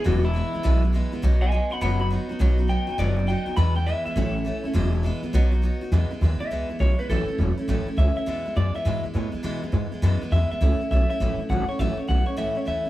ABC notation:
X:1
M:4/4
L:1/8
Q:"Swing" 1/4=204
K:E
V:1 name="Clean electric guitar"
F E4 z3 | z [dg] [dg] [fb] [fb] b z2 | z2 =g2 =d2 g2 | b =g e e4- e- |
e z6 z | z3 e3 c B | A2 z4 e e- | e2 =d e2 z3 |
z6 e e- | e2 e e2 z f c | e c f c e c e2 |]
V:2 name="Steel-string acoustic guitar"
[E,,B,,E,G,B,E] [G,B,E] [E,G,B,E] [E,G,B,E] [E,,B,,E,G,B,E] [E,G,B,E] [E,G,B,E] [E,G,B,E] | [B,,F,B,DF] [B,DF] [F,B,DF] [B,DF] [B,,F,B,DF] [B,DF] [F,B,DF] [B,DF] | [B,,F,B,DF] [B,DF] [F,B,DF] [B,DF] [B,,F,B,DF] [B,DF] [F,B,DF] [B,DF] | [E,,B,,E,G,B,E] [E,G,B,E] [E,G,B,E] [E,G,B,E] [A,,E,A,CE] [A,CE] [E,A,CE] [A,CE] |
[E,,B,,E,G,B,E] [G,B,E] [E,G,B,E] [E,G,B,E] [B,,F,B,DF] [B,DF] [F,B,DF] [B,DF] | [E,,B,,E,G,B,E] [E,G,B,E] [E,G,B,E] [E,G,B,E] [E,,B,,E,G,B,E] [E,G,B,E] [E,G,B,E] [E,G,B,E] | [A,,E,A,CE] [A,CE] [E,A,CE] [A,CE] [A,,E,A,CE] [A,CE] [E,A,CE] [A,CE] | [E,,B,,E,G,B,E] [E,G,B,E] [E,G,B,E] [E,G,B,E] [E,,B,,E,G,B,E] [E,G,B,E] [E,G,B,E] [E,G,B,E] |
[E,,B,,E,G,B,E] [E,G,B,E] [E,G,B,E] [E,G,B,E] [E,,B,,E,G,B,E] [E,G,B,E] [E,G,B,E] [E,G,B,E] | [A,,E,A,CE] [A,CE] [E,A,CE] [A,CE] [A,,E,A,CE] [A,CE] [E,A,CE] [A,CE] | [A,,E,A,CE] [A,CE] [E,A,CE] [A,CE] [A,,E,A,CE] [A,CE] [E,A,CE] [CE] |]
V:3 name="Upright bass" clef=bass
E,,,3 z B,,,3 z | B,,,3 z F,,,3 z | B,,,3 z F,,,3 z | E,,3 z A,,,3 z |
E,,,3 z B,,,3 z | E,, z D,, z C,, z B,,, z | A,,, z E,,, z A,,, z C,, z | E,, z F,, z G,, z A,, z |
B,, z G,, z F,, z E,, z | C,, z B,,, z A,,, z G,,, z | A,,, z B,,, z C,, z D,, z |]